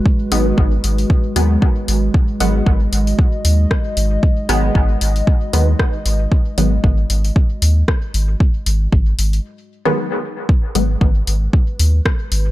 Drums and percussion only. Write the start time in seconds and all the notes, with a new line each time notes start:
0.06 kick
0.32 open hi-hat
0.58 kick
0.84 open hi-hat
0.98 open hi-hat
1.10 kick
1.36 open hi-hat
1.62 kick
1.88 open hi-hat
2.14 kick
2.40 open hi-hat
2.66 kick
2.93 open hi-hat
3.07 open hi-hat
3.19 kick
3.45 open hi-hat
3.71 kick, cross-stick
3.97 open hi-hat
4.23 kick
4.49 open hi-hat
4.75 kick
5.01 open hi-hat
5.16 open hi-hat
5.27 kick
5.53 open hi-hat
5.79 kick, cross-stick
6.06 open hi-hat
6.32 kick
6.58 open hi-hat
6.84 kick
7.10 open hi-hat
7.25 open hi-hat
7.36 kick
7.62 open hi-hat
7.88 kick, cross-stick
8.14 open hi-hat
8.40 kick
8.66 open hi-hat
8.92 kick
9.19 open hi-hat
9.33 open hi-hat
10.49 kick
10.75 open hi-hat
11.01 kick
11.27 open hi-hat
11.53 kick
11.79 open hi-hat
12.06 kick, cross-stick
12.32 open hi-hat